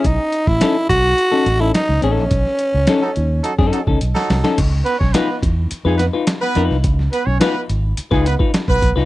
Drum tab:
CC |----------------|----------------|x---------------|----------------|
HH |x-x-x-x-x-x-x-x-|x-x-x-x-x-x-x-o-|x-x-x-x-x-x-x-x-|x-x-x-x-x-x-x-x-|
SD |---oo-----o-oo-o|-o--o----o---ooo|---oo-----o-oo-o|-o--o----o--o--o|
BD |o--o--o---------|o--------o-o----|o--o--o---------|o--------o-o-oo-|